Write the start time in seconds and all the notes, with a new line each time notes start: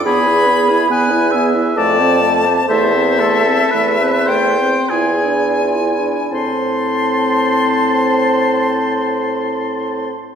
0.05 E2 B3 G#4 B5
0.27 E4 B4
0.46 B3 G#4
0.68 E4 B4
0.89 E2 B3 G#4 B4 G#5
1.11 E4 B4
1.31 B3 G#4 E5
1.54 E4 B4
1.75 F2 A3 A4 D5 A5
1.97 C4 C5
2.21 A3 A4
2.45 C4 C5
2.68 E2 A3 A4 C5 E5
2.93 C4 C5
3.17 A3 A4
3.45 C4 C5
3.71 E2 A3 A4 B4
3.99 C4 C5
4.26 A3 A4 C5 G5
4.58 C4 C5
4.89 E2 E4 F4 G#4 G#5
5.23 D4 E4
5.60 E4 F4
5.96 D4 E4
6.31 A2 C4 C5 A5 C6